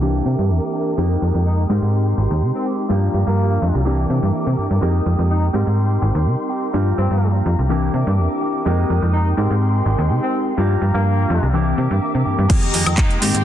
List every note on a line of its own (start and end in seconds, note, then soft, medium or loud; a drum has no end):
0.00 0.22 C2 medium
0.00 0.93 E3 medium
0.00 0.26 E3 medium
0.00 0.93 A#3 medium
0.00 0.26 A#3 medium
0.00 0.93 C4 medium
0.00 0.94 D4 medium
0.00 0.25 D4 medium
0.00 0.94 G4 medium
0.00 0.24 G4 medium
0.00 1.68 A#4 medium
0.00 0.97 E5 medium
0.00 0.97 D6 medium
0.25 0.36 C3 medium
0.25 0.74 A#3 soft
0.25 0.73 D4 soft
0.25 0.73 G4 medium
0.39 0.51 G2 loud
0.50 0.60 E2 medium
0.73 0.97 A#3 soft
0.73 0.98 D4 soft
0.73 0.97 G4 medium
0.97 1.17 F2 medium
0.97 1.65 G#3 medium
0.97 1.70 G#3 medium
0.97 1.70 A#3 medium
0.97 1.65 C4 medium
0.97 1.65 D#4 medium
0.97 1.69 D#4 medium
0.97 1.65 G4 medium
0.97 1.68 G4 medium
0.97 1.66 A#4 medium
0.97 1.68 G5 medium
0.97 1.69 D#6 medium
1.22 1.32 F2 medium
1.34 1.66 F2 medium
1.46 1.61 D#4 medium
1.69 1.80 G#2 loud
1.69 2.85 G#3 medium
1.69 2.89 G#3 medium
1.69 2.85 C4 medium
1.69 2.67 C4 medium
1.69 2.85 D#4 medium
1.69 2.66 D#4 medium
1.69 2.65 G4 medium
1.69 2.86 G4 medium
1.69 2.86 A#4 loud
1.69 2.89 G5 medium
1.69 2.88 C6 medium
1.82 2.14 G#2 medium
2.18 2.28 G#1 medium
2.31 2.43 D#2 loud
2.42 2.52 C3 medium
2.54 2.68 C4 medium
2.65 2.90 D#4 soft
2.65 2.90 G4 medium
2.89 3.09 G2 medium
2.89 3.85 F3 medium
2.89 3.81 G3 medium
2.89 3.81 A#3 medium
2.89 3.85 A#3 medium
2.89 3.81 D4 medium
2.89 3.85 D4 medium
2.89 3.81 F4 medium
2.89 3.85 G4 medium
2.89 3.82 G4 medium
2.89 3.86 G4 medium
2.89 3.85 F5 medium
2.89 3.85 A#5 medium
3.14 3.24 G2 medium
3.26 3.58 G2 medium
3.26 3.91 A#3 medium
3.62 3.72 F2 medium
3.75 4.06 C2 medium
3.85 4.77 E3 medium
3.85 4.58 E3 medium
3.85 4.77 A#3 medium
3.85 4.58 A#3 medium
3.85 4.77 C4 medium
3.85 4.77 D4 medium
3.85 4.57 D4 medium
3.85 4.57 G4 medium
3.85 4.78 G4 medium
3.85 5.52 A#4 medium
3.85 4.81 E5 medium
3.85 4.81 D6 medium
4.10 4.20 C3 medium
4.23 4.31 G2 loud
4.47 4.55 C3 loud
4.57 4.68 G2 soft
4.57 4.81 A#3 soft
4.57 4.82 D4 medium
4.57 4.82 G4 medium
4.71 4.79 G2 loud
4.81 5.01 F2 medium
4.81 5.49 G#3 medium
4.81 5.54 G#3 medium
4.81 5.54 A#3 medium
4.81 5.49 C4 medium
4.81 5.49 D#4 medium
4.81 5.53 D#4 medium
4.81 5.49 G4 medium
4.81 5.53 G4 medium
4.81 5.50 A#4 medium
4.81 6.72 G5 medium
4.81 5.53 D#6 medium
5.06 5.16 F2 medium
5.19 5.50 F2 medium
5.30 5.45 D#4 medium
5.53 5.64 G#2 loud
5.53 6.73 G3 medium
5.53 6.69 C4 medium
5.53 6.02 C4 medium
5.53 6.69 D#4 medium
5.53 6.01 D#4 medium
5.53 6.01 G4 medium
5.53 6.69 G4 medium
5.53 6.70 A#4 loud
5.53 6.73 C6 medium
5.67 5.98 G#2 medium
6.01 6.12 G#1 loud
6.01 6.50 C4 soft
6.01 6.49 D#4 medium
6.01 6.49 G4 medium
6.15 6.28 D#2 loud
6.26 6.36 C3 medium
6.49 6.74 C4 soft
6.49 6.74 D#4 soft
6.49 6.74 G4 medium
6.73 6.93 G2 loud
6.73 7.69 F3 medium
6.73 7.65 G3 medium
6.73 7.65 A#3 medium
6.73 7.69 A#3 medium
6.73 7.65 D4 medium
6.73 7.69 D4 medium
6.73 7.66 F4 medium
6.73 7.69 G4 medium
6.73 7.66 G4 medium
6.73 7.71 G4 medium
6.73 7.69 F5 medium
6.73 7.69 A#5 medium
6.97 7.08 G2 medium
6.97 7.34 C4 medium
7.11 7.42 G2 medium
7.46 7.56 F2 loud
7.59 7.90 C2 medium
7.69 8.61 E3 medium
7.69 7.94 E3 medium
7.69 8.61 A#3 medium
7.69 7.94 A#3 medium
7.69 8.61 C4 medium
7.69 8.61 D4 medium
7.69 7.93 D4 medium
7.69 8.62 G4 medium
7.69 7.92 G4 loud
7.69 8.65 A#4 medium
7.69 8.65 E5 medium
7.69 8.65 D6 medium
7.94 8.04 C3 medium
7.94 8.42 A#3 soft
7.94 8.41 D4 medium
7.94 8.41 G4 medium
8.07 8.20 G2 loud
8.18 8.28 E2 medium
8.41 8.65 A#3 soft
8.41 8.66 D4 medium
8.41 8.66 G4 medium
8.65 8.85 F2 medium
8.65 9.33 G#3 medium
8.65 9.38 G#3 medium
8.65 9.38 A#3 medium
8.65 9.33 C4 medium
8.65 9.33 D#4 medium
8.65 9.37 D#4 medium
8.65 9.34 G4 medium
8.65 9.37 G4 medium
8.65 9.37 A#4 medium
8.65 9.34 A#4 medium
8.65 10.56 G5 medium
8.65 9.37 D#6 medium
8.90 9.00 F2 medium
9.02 9.34 F2 medium
9.14 9.29 D#4 medium
9.37 9.48 G#2 loud
9.37 10.53 G#3 medium
9.37 10.56 G#3 medium
9.37 10.53 C4 medium
9.37 9.86 C4 medium
9.37 10.53 D#4 medium
9.37 9.86 D#4 medium
9.37 9.85 G4 medium
9.37 10.53 G4 medium
9.37 10.54 A#4 loud
9.37 10.56 C6 medium
9.51 9.82 G#2 medium
9.86 9.96 G#1 medium
9.86 10.59 D#4 soft
9.86 10.59 G4 medium
9.98 10.11 D#2 loud
10.10 10.20 C3 medium
10.23 10.36 C4 medium
10.57 10.77 G2 medium
10.57 11.53 F3 medium
10.57 11.49 G3 medium
10.57 11.49 A#3 medium
10.57 11.53 A#3 medium
10.57 11.49 D4 medium
10.57 11.53 D4 medium
10.57 11.49 F4 medium
10.57 11.53 G4 medium
10.57 11.50 G4 medium
10.57 11.54 G4 medium
10.57 11.53 F5 medium
10.57 11.53 A#5 medium
10.82 10.92 G2 medium
10.94 11.26 G2 medium
10.94 11.59 A#3 medium
11.30 11.40 F2 loud
11.43 11.74 C2 medium
11.53 12.45 E3 medium
11.53 11.78 E3 medium
11.53 12.45 A#3 medium
11.53 11.78 A#3 medium
11.53 12.45 C4 medium
11.53 12.45 D4 medium
11.53 11.77 D4 medium
11.53 12.46 G4 medium
11.53 11.76 G4 medium
11.53 12.49 A#4 medium
11.53 12.49 E5 medium
11.53 12.49 D6 medium
11.77 11.88 C3 loud
11.77 12.26 A#3 soft
11.77 12.25 D4 medium
11.77 12.25 G4 medium
11.91 11.99 G2 loud
12.15 12.23 C3 medium
12.25 12.36 G2 soft
12.25 12.49 A#3 soft
12.25 12.50 D4 medium
12.25 12.50 G4 medium
12.38 12.47 G2 loud
12.49 12.69 F2 loud
12.49 13.17 D#3 medium
12.49 13.17 G#3 medium
12.49 12.63 G#3 medium
12.49 13.20 G#3 medium
12.49 13.17 A#3 medium
12.49 12.63 A#3 medium
12.49 13.17 C4 medium
12.49 12.62 D#4 medium
12.49 13.18 G4 medium
12.49 12.61 G4 medium
12.49 13.21 D#5 medium
12.49 13.44 G5 medium
12.49 13.21 A#5 medium
12.49 kick loud
12.49 closed hi-hat medium
12.49 crash loud
12.49 shaker soft
12.62 12.73 A#3 medium
12.62 12.74 D#4 medium
12.62 12.74 G4 medium
12.62 closed hi-hat soft
12.62 shaker soft
12.74 12.84 F2 medium
12.74 12.87 G#3 medium
12.74 12.87 A#3 medium
12.74 12.86 D#4 medium
12.74 12.85 G4 medium
12.74 open hi-hat loud
12.74 shaker medium
12.86 13.18 F2 medium
12.86 12.97 A#3 medium
12.86 12.97 D#4 medium
12.86 12.98 G4 medium
12.86 closed hi-hat soft
12.86 high woodblock medium
12.86 shaker soft
12.97 13.22 G#3 medium
12.97 13.21 A#3 loud
12.97 13.13 D#4 medium
12.97 13.21 D#4 loud
12.97 13.22 G4 loud
12.97 kick loud
12.97 clap loud
12.97 closed hi-hat medium
12.97 shaker soft
13.11 closed hi-hat soft
13.11 shaker soft
13.21 13.32 G#2 loud
13.21 13.44 D#3 medium
13.21 13.44 G#3 medium
13.21 13.44 A#3 medium
13.21 13.44 C4 medium
13.21 13.44 D#4 medium
13.21 13.44 G4 loud
13.21 13.44 G4 medium
13.21 13.44 C6 medium
13.21 open hi-hat loud
13.21 shaker medium
13.34 13.44 G#2 medium
13.34 closed hi-hat medium
13.34 shaker soft